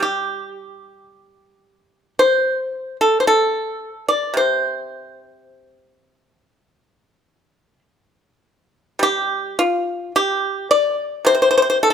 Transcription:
0.00 3.25 G3 soft
0.00 2.14 G4 medium
2.19 2.96 C5 medium
3.01 3.19 A4 medium
3.20 3.27 C5 medium
3.27 4.05 A4 medium
4.08 4.34 D5 medium
4.34 7.81 C3 soft
4.34 7.79 C5 medium
8.99 11.24 G3 medium
8.99 9.56 G4 medium
9.59 10.11 F4 medium
10.16 10.67 G4 medium
10.71 11.23 D5 medium
11.25 11.94 C3 medium
11.25 11.33 C5 medium
11.35 11.41 C5 medium
11.42 11.49 C5 medium
11.51 11.56 C5 medium
11.58 11.61 C5 medium
11.62 11.69 C5 medium
11.70 11.77 C5 medium
11.83 11.89 A4 medium
11.90 11.94 A4 medium

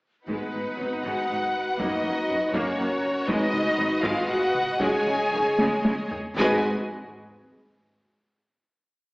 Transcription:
0.27 0.36 G#1 medium
0.27 0.36 G#2 medium
0.27 0.51 G#3 medium
0.27 1.00 B3 medium
0.27 1.75 D#4 soft
0.27 1.00 B4 medium
0.27 2.50 B4 soft
0.27 1.00 B4 medium
0.27 3.24 F#5 soft
0.27 taiko medium
0.52 0.61 G#1 soft
0.52 0.62 G#2 soft
0.52 0.60 G#3 soft
0.78 0.87 G#1 soft
0.78 0.88 G#2 soft
0.78 0.86 F#3 soft
1.03 1.12 G#1 medium
1.03 1.12 G#2 medium
1.03 1.27 G#3 medium
1.03 1.79 F#4 medium
1.03 1.78 F#5 medium
1.03 1.80 F#5 medium
1.28 1.37 G#1 soft
1.28 1.37 G#2 soft
1.28 1.36 G#3 soft
1.42 taiko soft
1.78 1.87 F#1 medium
1.78 1.87 F#2 medium
1.78 2.02 A#3 medium
1.78 2.53 D#4 medium
1.78 4.76 F#4 medium
1.78 2.54 D#5 medium
1.78 2.53 D#5 medium
1.78 taiko medium
2.04 2.12 F#1 soft
2.04 2.12 F#2 soft
2.04 2.12 A#3 soft
2.28 2.37 F#1 soft
2.28 2.38 F#2 soft
2.28 2.36 F#3 soft
2.53 2.62 F#1 medium
2.53 2.62 F#2 medium
2.53 2.77 A#3 medium
2.53 3.28 C#4 medium
2.53 3.28 A#4 medium
2.53 3.26 C#5 medium
2.53 3.28 C#5 medium
2.53 taiko medium
2.78 2.87 F#1 medium
2.78 2.87 F#2 soft
2.78 2.86 A#3 medium
3.28 3.36 G#1 medium
3.28 3.36 G#2 medium
3.28 3.51 G#3 medium
3.28 4.03 D#4 loud
3.28 4.77 B4 medium
3.28 4.02 D#5 medium
3.28 6.13 D#5 medium
3.28 4.03 D#5 medium
3.28 taiko medium
3.53 3.61 G#1 medium
3.53 3.61 G#2 medium
3.53 3.61 G#3 soft
3.53 taiko mid soft
3.78 3.86 G#1 medium
3.78 3.86 G#2 medium
3.78 3.86 F#3 medium
4.03 4.11 G#1 medium
4.03 4.11 G#2 medium
4.03 4.27 G#3 medium
4.03 4.29 F4 loud
4.03 4.29 F5 medium
4.03 4.28 F5 medium
4.03 taiko medium
4.28 4.37 G#1 medium
4.28 4.36 G#2 medium
4.28 4.38 G#3 medium
4.28 4.79 F#4 loud
4.28 4.81 F#5 medium
4.28 4.80 F#5 medium
4.55 taiko mid soft
4.80 4.88 C#2 medium
4.80 4.88 C#3 medium
4.80 5.05 G#3 medium
4.80 6.15 G#4 medium
4.80 6.12 G#4 loud
4.80 6.15 C#5 medium
4.80 6.12 G#5 medium
4.80 taiko medium
5.06 5.14 C#2 medium
5.06 5.14 C#3 medium
5.06 5.15 G#3 soft
5.06 taiko mid soft
5.32 5.40 C#2 medium
5.32 5.41 C#3 medium
5.32 5.42 D#3 soft
5.58 5.67 C#2 medium
5.58 5.67 C#3 medium
5.58 5.84 G#3 medium
5.58 taiko high medium
5.85 5.93 C#2 soft
5.85 5.94 C#3 soft
5.85 5.94 G#3 medium
5.85 taiko high medium
6.11 taiko low medium
6.38 6.68 G#1 medium
6.38 6.68 G#2 medium
6.38 6.68 G#3 medium
6.38 6.68 F#4 medium
6.38 6.61 G#4 loud
6.38 6.68 B4 medium
6.38 6.68 D#5 medium
6.38 6.68 G#5 medium
6.38 taiko low medium

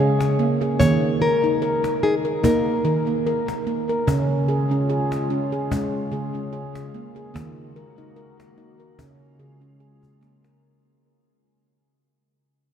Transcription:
0.00 0.76 C#3 medium
0.00 0.39 G#4 medium
0.00 0.35 C#5 medium
0.20 cajon slap soft
0.39 0.61 A#3 medium
0.61 0.80 G#4 medium
0.61 cajon slap soft
0.80 2.40 D#3 medium
0.80 1.21 A#3 medium
0.80 1.21 C#5 loud
0.80 cajon bass medium
1.21 1.43 A#4 medium
1.21 2.03 A#4 medium
1.42 1.62 D#4 medium
1.42 cajon slap soft
1.62 2.03 A#4 medium
1.62 cajon slap soft
1.84 cajon slap soft
2.03 2.25 D#4 medium
2.03 2.14 G#4 medium
2.25 2.44 A#4 medium
2.44 2.83 A#3 loud
2.44 2.84 D#4 medium
2.44 3.63 A#4 medium
2.44 cajon bass medium
2.85 4.03 D#3 medium
2.85 3.07 A#4 medium
2.85 cajon slap soft
3.07 3.26 A#3 medium
3.27 3.67 A#4 medium
3.48 cajon slap soft
3.67 3.89 A#3 medium
3.89 4.08 A#4 medium
3.89 cajon slap soft
4.07 7.31 C#3 medium
4.07 5.67 C#3 loud
4.07 7.32 G#3 medium
4.07 4.48 C#4 medium
4.07 7.32 F4 medium
4.07 cajon bass medium
4.48 4.70 G#4 medium
4.71 4.90 C#4 medium
4.71 cajon slap soft
4.90 5.30 G#4 medium
4.90 cajon slap soft
5.12 cajon slap soft
5.30 5.52 C#4 medium
5.52 5.71 G#4 medium
5.71 6.10 G#3 medium
5.71 6.12 C#4 medium
5.71 cajon bass medium
6.12 7.31 C#3 medium
6.12 6.34 G#4 medium
6.12 cajon slap soft
6.35 6.53 C#4 medium
6.53 6.94 G#4 medium
6.75 cajon slap soft
6.94 7.16 A#3 medium
7.16 7.35 G#4 medium
7.16 cajon slap soft
7.34 8.95 D#3 medium
7.34 8.97 D#3 medium
7.34 7.75 A#3 medium
7.34 8.97 A#3 medium
7.34 8.97 F#4 medium
7.34 cajon bass medium
7.34 cajon slap soft
7.76 7.98 A#4 medium
7.98 8.17 D#4 medium
7.98 cajon slap soft
8.16 8.57 A#4 medium
8.16 cajon slap soft
8.40 cajon slap soft
8.58 8.80 D#4 medium
8.80 8.99 A#4 medium
8.98 10.61 C#3 medium
8.98 9.37 C#3 medium
8.98 10.60 G#3 medium
8.98 9.40 C#4 medium
8.98 10.61 F4 medium
8.98 cajon bass medium
9.39 10.58 C#3 medium
9.39 9.62 G#4 medium
9.61 9.80 C#4 medium
9.80 10.21 G#4 medium
10.03 cajon bass soft
10.21 10.43 A#3 medium
10.21 cajon slap soft
10.44 10.63 A#4 medium
10.44 cajon slap soft

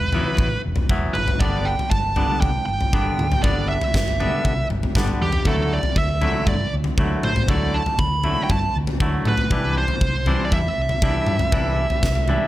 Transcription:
0.00 0.21 E1 medium
0.00 0.60 B4 medium
0.12 0.48 E3 medium
0.12 0.48 F#3 medium
0.12 0.48 B3 medium
0.12 0.47 E4 medium
0.12 floor tom medium
0.37 0.55 A1 medium
0.37 kick medium
0.37 floor tom medium
0.65 0.82 E1 medium
0.76 floor tom medium
0.89 1.06 E1 medium
0.89 1.15 E3 medium
0.89 1.16 F#3 medium
0.89 1.16 B3 medium
0.89 1.16 E4 medium
0.89 kick loud
1.14 1.32 G1 medium
1.14 1.41 B4 medium
1.14 mid tom medium
1.28 floor tom medium
1.39 1.73 G1 medium
1.39 1.74 D3 medium
1.39 1.74 G3 medium
1.39 1.74 B3 medium
1.39 1.74 D4 medium
1.39 1.67 D5 medium
1.39 kick loud
1.39 floor tom medium
1.65 1.90 G5 medium
1.79 floor tom medium
1.90 2.24 G1 medium
1.90 2.40 A5 medium
1.90 kick medium
2.16 2.51 D3 medium
2.16 2.50 G3 medium
2.16 2.50 B3 medium
2.16 2.50 D4 medium
2.16 floor tom medium
2.41 2.59 C2 medium
2.41 2.65 G5 medium
2.41 kick medium
2.41 floor tom medium
2.66 2.84 G1 medium
2.66 3.45 G5 medium
2.81 floor tom medium
2.93 3.09 G1 medium
2.93 3.26 D3 medium
2.93 3.26 G3 medium
2.93 3.27 B3 medium
2.93 3.26 D4 medium
2.93 kick loud
3.18 3.35 D2 medium
3.18 mid tom medium
3.32 floor tom medium
3.43 3.76 G1 medium
3.43 3.77 D3 medium
3.43 3.77 G3 medium
3.43 3.77 B3 medium
3.43 3.78 D4 medium
3.43 3.68 D5 medium
3.43 kick loud
3.43 floor tom medium
3.69 4.66 E5 medium
3.81 floor tom medium
3.94 4.27 G1 medium
3.94 kick medium
3.94 snare medium
4.08 floor tom medium
4.20 4.54 D3 medium
4.20 4.53 G3 medium
4.20 4.53 B3 medium
4.20 4.53 D4 medium
4.20 floor tom medium
4.45 4.61 C2 medium
4.45 kick medium
4.45 floor tom medium
4.70 4.87 G1 medium
4.70 floor tom medium
4.83 floor tom medium
4.95 5.12 G1 medium
4.95 5.28 D3 medium
4.95 5.29 G3 medium
4.95 5.29 B3 medium
4.95 5.29 D4 medium
4.95 kick loud
4.95 snare medium
4.95 mid tom medium
5.07 floor tom medium
5.21 5.37 E2 medium
5.21 5.48 G4 medium
5.32 floor tom medium
5.45 5.78 D2 medium
5.45 5.79 D3 medium
5.45 5.79 F#3 medium
5.45 5.80 A3 medium
5.45 5.80 E4 medium
5.45 5.73 A4 medium
5.45 kick loud
5.45 floor tom medium
5.73 5.98 D5 medium
5.83 floor tom medium
5.96 6.29 D2 medium
5.96 6.48 E5 medium
5.96 kick loud
6.21 6.55 D3 medium
6.21 6.55 F#3 medium
6.21 6.55 A3 medium
6.21 6.55 E4 medium
6.21 floor tom medium
6.47 6.64 G2 medium
6.47 6.72 D5 medium
6.47 kick loud
6.47 floor tom medium
6.73 6.89 D2 medium
6.84 floor tom medium
6.98 7.14 D2 medium
6.98 7.31 D3 medium
6.98 7.31 F#3 medium
6.98 7.31 A3 medium
6.98 7.32 E4 medium
6.98 kick medium
7.23 7.40 A2 medium
7.23 7.50 C5 medium
7.23 mid tom medium
7.36 floor tom medium
7.48 7.81 D2 medium
7.48 7.81 D3 medium
7.48 7.82 F#3 medium
7.48 7.82 A3 medium
7.48 7.82 E4 medium
7.48 7.75 D5 medium
7.48 kick loud
7.48 floor tom medium
7.74 8.00 A5 medium
7.86 floor tom medium
7.99 8.32 D2 medium
7.99 8.40 B5 medium
7.99 kick medium
8.24 8.58 D3 medium
8.24 8.58 F#3 medium
8.24 8.58 A3 medium
8.24 8.57 E4 medium
8.24 floor tom medium
8.44 8.50 G5 medium
8.49 8.66 G2 medium
8.49 8.74 A5 medium
8.49 kick medium
8.49 floor tom medium
8.76 8.92 D2 medium
8.87 floor tom medium
9.00 9.17 D2 medium
9.00 9.34 D3 medium
9.00 9.34 F#3 medium
9.00 9.34 A3 medium
9.00 9.34 E4 medium
9.00 kick loud
9.25 9.52 A2 medium
9.25 9.74 B4 medium
9.25 mid tom medium
9.38 floor tom medium
9.51 9.83 C2 medium
9.51 9.84 E3 medium
9.51 9.84 G3 medium
9.51 9.85 D4 medium
9.51 9.85 E4 medium
9.51 kick loud
9.51 floor tom medium
9.78 10.42 C5 medium
9.88 floor tom medium
10.01 10.34 C2 medium
10.01 kick loud
10.26 10.61 E3 medium
10.26 10.61 G3 medium
10.26 10.60 D4 medium
10.26 10.60 E4 medium
10.26 floor tom medium
10.45 10.52 D5 medium
10.52 10.69 E2 medium
10.52 12.47 E5 medium
10.52 kick loud
10.52 floor tom medium
10.78 10.94 C2 medium
10.89 floor tom medium
11.02 11.19 C2 medium
11.02 11.36 E3 medium
11.02 11.36 G3 medium
11.02 11.36 D4 medium
11.02 11.36 E4 medium
11.02 kick loud
11.26 11.44 G2 medium
11.26 mid tom medium
11.39 floor tom medium
11.52 11.86 C2 medium
11.52 11.86 E3 medium
11.52 11.86 G3 medium
11.52 11.86 D4 medium
11.52 11.87 E4 medium
11.52 kick loud
11.52 floor tom medium
11.90 floor tom medium
12.03 12.36 C2 medium
12.03 kick loud
12.03 snare medium
12.15 floor tom medium
12.28 12.47 E3 medium
12.28 12.47 G3 medium
12.28 12.47 D4 medium
12.28 12.47 E4 medium
12.28 floor tom medium

